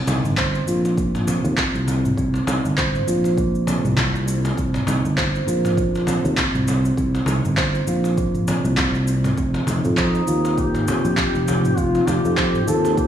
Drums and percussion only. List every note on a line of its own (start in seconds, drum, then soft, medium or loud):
0.08 cajon bass loud
0.08 shaker medium
0.25 mid tom medium
0.25 shaker soft
0.37 kick medium
0.37 clap loud
0.37 shaker soft
0.55 shaker soft
0.68 shaker medium
0.85 cajon slap soft
0.85 shaker soft
0.98 kick loud
0.98 shaker soft
1.15 cajon slap medium
1.15 mid tom medium
1.15 shaker soft
1.27 cajon bass medium
1.27 shaker medium
1.45 shaker soft
1.57 kick loud
1.57 clap loud
1.57 shaker soft
1.75 shaker soft
1.88 cajon bass medium
1.88 shaker medium
2.05 mid tom medium
2.05 shaker soft
2.17 kick loud
2.17 shaker soft
2.34 cajon slap medium
2.34 shaker soft
2.47 cajon bass loud
2.47 shaker medium
2.65 shaker soft
2.78 kick loud
2.78 clap loud
2.78 shaker soft
2.95 mid tom medium
2.95 shaker soft
3.08 shaker medium
3.24 cajon slap soft
3.24 shaker soft
3.38 kick loud
3.38 shaker soft
3.55 shaker soft
3.67 cajon bass medium
3.67 shaker medium
3.85 mid tom medium
3.85 shaker soft
3.96 cajon bass medium
3.96 kick loud
3.96 clap loud
3.96 shaker soft
4.15 shaker soft
4.28 shaker medium
4.45 cajon slap medium
4.45 shaker soft
4.57 kick loud
4.57 shaker soft
4.74 cajon slap medium
4.74 mid tom medium
4.74 shaker soft
4.87 cajon bass loud
4.87 shaker medium
5.05 shaker soft
5.17 kick loud
5.17 clap loud
5.17 shaker soft
5.35 shaker soft
5.48 shaker medium
5.65 cajon slap medium
5.65 mid tom medium
5.65 shaker soft
5.77 kick loud
5.77 shaker soft
5.95 cajon slap medium
5.95 shaker soft
6.07 cajon bass medium
6.07 shaker medium
6.25 shaker soft
6.37 kick loud
6.37 clap loud
6.37 shaker soft
6.55 mid tom medium
6.55 shaker soft
6.68 cajon bass medium
6.68 shaker medium
6.85 shaker soft
6.97 kick loud
6.97 shaker soft
7.15 cajon slap medium
7.15 shaker soft
7.26 cajon bass medium
7.26 shaker medium
7.45 mid tom medium
7.45 shaker soft
7.57 kick loud
7.57 clap medium
7.57 shaker soft
7.75 shaker soft
7.87 shaker medium
8.04 cajon slap soft
8.04 shaker soft
8.18 kick loud
8.18 shaker soft
8.35 mid tom medium
8.35 shaker soft
8.48 cajon bass medium
8.48 shaker medium
8.65 shaker soft
8.77 cajon bass medium
8.77 kick loud
8.77 clap loud
8.77 shaker soft
8.95 shaker soft
9.07 shaker medium
9.24 cajon slap medium
9.24 mid tom medium
9.24 shaker soft
9.38 kick loud
9.38 shaker soft
9.54 cajon slap medium
9.54 shaker soft
9.67 cajon bass medium
9.67 shaker medium
9.84 mid tom medium
9.84 shaker soft
9.97 kick loud
9.97 clap medium
9.97 shaker soft
10.15 shaker soft
10.27 shaker medium
10.45 cajon slap soft
10.45 shaker soft
10.58 kick medium
10.58 shaker soft
10.75 cajon slap medium
10.75 mid tom medium
10.75 shaker soft
10.88 cajon bass medium
10.88 shaker medium
11.05 shaker soft
11.17 kick loud
11.17 clap loud
11.17 shaker soft
11.35 shaker soft
11.48 cajon bass medium
11.48 shaker medium
11.65 mid tom medium
11.65 shaker soft
11.78 kick medium
11.78 shaker soft
11.95 cajon slap medium
11.95 shaker soft
12.07 cajon bass medium
12.07 shaker medium
12.25 shaker soft
12.38 kick medium
12.38 clap medium
12.38 shaker soft
12.55 mid tom medium
12.55 shaker soft
12.68 shaker medium
12.85 cajon slap medium
12.85 shaker soft
12.97 kick loud
12.97 shaker soft